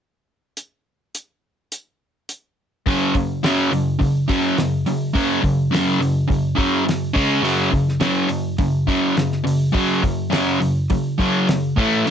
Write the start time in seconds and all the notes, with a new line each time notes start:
0.57 closed hi-hat
1.15 closed hi-hat
1.72 closed hi-hat
2.29 closed hi-hat
2.86 F#2 C#3 F#3, kick, open hi-hat
3.15 F#2 C#3, kick, open hi-hat
3.43 F#2 C#3 F#3, snare, open hi-hat
3.72 F#2 C#3, open hi-hat
4.00 F#2 C#3, kick, open hi-hat
4.28 F#2 C#3 F#3, kick, open hi-hat
4.58 F#2 C#3, snare, open hi-hat
4.86 F#2 C#3, open hi-hat
5.14 F#2 C#3 F#3, kick, open hi-hat
5.42 F#2 C#3, kick, open hi-hat
5.71 F#2 C#3 F#3, snare, open hi-hat
6.00 F#2 C#3, open hi-hat
6.28 F#2 C#3, kick, open hi-hat
6.55 F#2 C#3 F#3, kick
6.60 open hi-hat
6.85 F#2 C#3, snare, open hi-hat
7.13 C#3 G#3 C#4, kick, open hi-hat
7.42 F#2 C#3 F#3, open hi-hat
7.71 F#2 C#3, kick, open hi-hat
7.88 snare
8.00 F#2 C#3 F#3, snare, open hi-hat
8.29 F#2 C#3, open hi-hat
8.58 F#2 C#3, kick, open hi-hat
8.87 F#2 C#3 F#3, kick, open hi-hat
9.16 F#2 C#3, snare, open hi-hat
9.32 snare
9.44 F#2 C#3, open hi-hat
9.72 F#2 C#3 F#3, kick, open hi-hat
10.03 F#2 C#3, kick, open hi-hat
10.30 F#2 C#3 F#3, snare, open hi-hat
10.60 F#2 C#3, open hi-hat
10.90 F#2 C#3, kick, open hi-hat
11.19 F#2 C#3 F#3, kick, open hi-hat
11.48 F#2 C#3, snare, open hi-hat
11.77 A2 E3 A3, kick, open hi-hat
12.07 F#2, open hi-hat